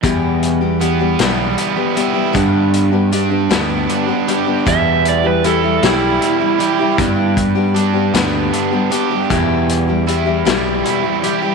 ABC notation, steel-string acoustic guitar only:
X:1
M:6/8
L:1/16
Q:3/8=52
K:Em
V:1 name="Steel-string acoustic guitar"
[E,,B,,E,G,B,G]3 [E,G,B,G] [E,G,B,G] [E,G,B,G] [E,,B,,E,G,B,G]3 [E,G,B,G] [E,G,B,G] [E,G,B,G] | [G,,D,G,B,DG]3 [G,B,DG] [G,B,DG] [G,B,DG] [G,,D,G,B,DG]3 [G,B,DG] [G,B,DG] [G,B,DG] | [E,,B,,E,G,EG]3 [E,G,EG] [E,G,EG] [E,G,EG] [E,,B,,E,G,EG]3 [E,G,EG] [E,G,EG] [E,G,EG] | [G,,D,G,B,DG]3 [G,B,DG] [G,B,DG] [G,B,DG] [G,,D,G,B,DG]3 [G,B,DG] [G,B,DG] [G,B,DG] |
[E,,B,,E,G,EG]3 [E,G,EG] [E,G,EG] [E,G,EG] [E,,B,,E,G,EG]3 [E,G,EG] [E,G,EG] [E,G,EG] |]